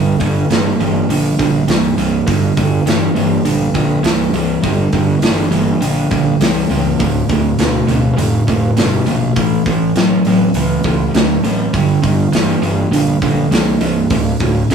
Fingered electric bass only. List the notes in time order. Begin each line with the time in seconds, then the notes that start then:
Already playing: G1
0.21 G1
0.50 G1
0.79 G1
1.09 A#1
1.39 A#1
1.68 C2
1.97 C2
2.28 G1
2.58 G1
2.86 G1
3.16 G1
3.46 A#1
3.75 A#1
4.04 C2
4.33 C2
4.63 G1
4.93 G1
5.21 G1
5.51 G1
5.81 A#1
6.11 A#1
6.40 C2
6.70 C#2
7.00 D1
7.29 D1
7.59 D1
7.88 D1
8.17 F1
8.48 F1
8.77 G1
9.07 A#1
9.36 A1
9.66 A1
9.96 A1
10.25 A1
10.54 C#2
10.84 C#2
11.14 D2
11.44 A1
11.74 G1
12.04 G1
12.32 G1
12.62 G1
12.91 A#1
13.22 A#1
13.51 C2
13.81 C2
14.10 D1
14.40 D1
14.69 D1